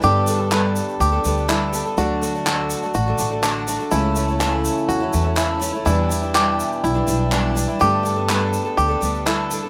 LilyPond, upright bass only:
\new Staff \with { instrumentName = "Upright bass" } { \clef bass \time 4/4 \key g \lydian \tempo 4 = 124 g,2 d,8 d,4. | d,2 a,,8 a,,4. | cis,2 e,8 e,4. | e,2 b,,8 b,,4. |
g,2 d,8 d,4. | }